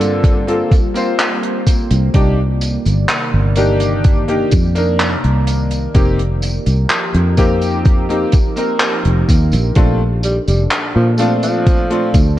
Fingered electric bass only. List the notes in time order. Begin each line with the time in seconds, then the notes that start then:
Already playing: G2
1.91 C2
2.15 C2
2.86 G1
3.34 G1
4.52 F2
5.24 C2
5.95 F1
6.67 C2
7.14 F2
9.05 F1
9.29 D#2
9.53 A#1
9.76 A#1
10.48 F1
10.96 A#2
12.14 D2